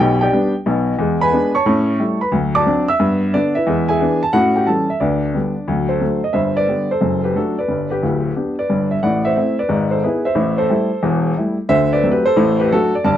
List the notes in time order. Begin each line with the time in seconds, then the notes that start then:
0.00 B1 B2 G4 G5
0.21 G4 D5 G5
0.33 G3 B3 D4
0.66 B1 B2
0.99 E2 G#3
1.21 B4 G#5 B5
1.32 G#3 B3 D4
1.55 C#5 A5 C#6
1.66 A2 C#4
1.99 G3 A3 E4
2.21 B4 B5
2.32 D2 F#3
2.55 D5 A5 D6
2.66 F#3 C4 D4
2.88 E5 E6
3.00 G2 B3
3.34 D3 B3 D4 D5
3.55 E4 B4 E5
3.67 E2 G#3
3.89 G#4 E5 G#5
4.00 E3 B3 D4
4.23 A5
4.33 A2 C#4 F#4 F#5
4.56 G4 G5
4.67 E3 G3 C#4 A4 A5
4.90 E5
5.00 D2 D4 B4 D5
5.35 D3 G3 B3
5.68 D2 F#3
5.89 A4 C5
6.01 D3 F#3 A3
6.24 D#5
6.33 G1 G2 C5 E5
6.57 B4 D5
6.68 D3 G3 B3
6.91 A4 C5
7.01 F#1 F#2
7.24 G4 B4
7.36 F#3 A3 D4 F#4 A4
7.59 B4 D5
7.68 G1 G2
7.90 G4 B4
8.02 D1 D2
8.36 B3 D4 G4
8.59 B4 D5
8.70 G1 G2
8.91 E5
9.03 A1 A2 D5 F#5
9.25 C5 E5
9.36 A3 C4 E4
9.59 B4 D5
9.69 G#1 G#2
9.91 A4 C5
10.03 B3 E4 G#4 B4
10.25 C5 E5
10.35 A1 A2
10.58 A4 C5
10.70 G3 A3 E4
11.03 E1 E2
11.37 G3 A3 E4
11.69 D2 D3 C5 E5
11.93 B4 D5
12.03 F#3 A3 C4
12.11 G4 B4
12.25 A4 C5
12.37 A1 A2
12.60 G4 B4
12.72 F#3 A3 D4 F#4 A4
12.95 D5
13.04 G1 G2 D5 A5